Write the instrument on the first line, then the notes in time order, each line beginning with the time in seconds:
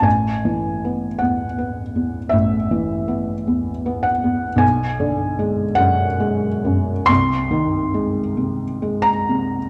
felt piano
0.01 A1 G#5
0.45 E3
0.85 B3
1.19 E2 F#5
1.58 B3
1.96 E2
2.29 A1 E5
2.71 E3
3.08 B3
3.47 E2
3.86 B3
4.03 F#5
4.24 E2
4.56 B1 G#5
5.00 D3
5.39 G#3
5.75 F#2 F#5
6.20 G#3
6.65 F#2
7.06 C2 C6
7.51 D#3
7.94 G#3
8.37 C3
8.82 G#3
9.02 A#5
9.29 C3